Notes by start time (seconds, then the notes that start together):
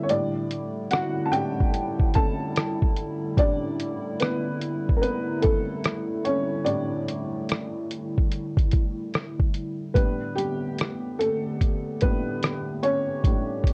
Already playing: D3 E3 G3 D4 E4 D5 E5
0.03 C#5
0.09 A2 G3 A3 D4 D5, closed hi-hat
0.51 closed hi-hat
0.91 F#4 F#5, cross-stick, closed hi-hat
1.25 A5
1.32 A2 G3 D4 G4 G5, closed hi-hat
1.60 kick
1.74 closed hi-hat
2.00 kick
2.14 A4 A5, kick, closed hi-hat
2.56 cross-stick, closed hi-hat
2.82 kick
2.97 closed hi-hat
3.37 A2 G3 D4 D5, kick, closed hi-hat
3.80 closed hi-hat
4.20 B3 B4, cross-stick, closed hi-hat
4.61 closed hi-hat
4.89 kick
4.96 A#4
5.02 B3 B4, closed hi-hat
5.42 A3 A4, kick, closed hi-hat
5.84 cross-stick, closed hi-hat
6.25 C#4 C#5, closed hi-hat
6.65 A2 G3 D4 D5, closed hi-hat
7.08 closed hi-hat
7.49 cross-stick, closed hi-hat
7.91 closed hi-hat
8.18 kick
8.32 closed hi-hat
8.57 kick, closed hi-hat
8.71 kick, closed hi-hat
9.14 cross-stick, closed hi-hat
9.40 kick
9.54 closed hi-hat
9.94 A2 D3 G3 A3 B3 D4 G4 B4, kick, closed hi-hat
10.35 G3 G4, closed hi-hat
10.78 cross-stick, closed hi-hat
11.19 A3 A4, closed hi-hat
11.61 kick, closed hi-hat
12.01 A2 G3 B3 D4 B4, kick, closed hi-hat
12.43 cross-stick, closed hi-hat
12.83 C#4 C#5, closed hi-hat
13.24 A2 G3 B3 D4, kick, closed hi-hat
13.64 kick, closed hi-hat